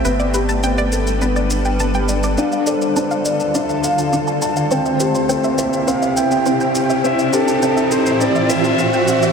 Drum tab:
SH |xxxxxxxxxxxxxxxx|xxxxxxxxxxxxxxxx|xxxxxxxxxxxxxxxx|xxxxxxxxxxxxxxxx|